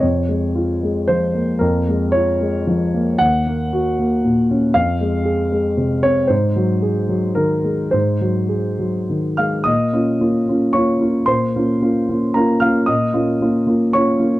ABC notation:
X:1
M:3/4
L:1/8
Q:1/4=113
K:Bbm
V:1 name="Grand piano"
d4 c2 | B2 d2 z2 | g6 | f4- f d |
c4 B2 | c4 z [ff'] | [ee']4 [dd']2 | [cc']4 [Bb] [ff'] |
[ee']4 [dd']2 |]
V:2 name="Grand piano"
F,, A, F A, F, B, | F,, A, F A, F, B, | E,, B, G B, B,, D | F,, A, A A, C, C |
A,, G, A G, E, A, | A,, G, A G, E, A, | B,, [B,DF] [B,DF] [B,DF] [B,DF] [B,DF] | B,, [B,DF] [B,DF] [B,DF] [B,DF] [B,DF] |
B,, [B,DF] [B,DF] [B,DF] [B,DF] [B,DF] |]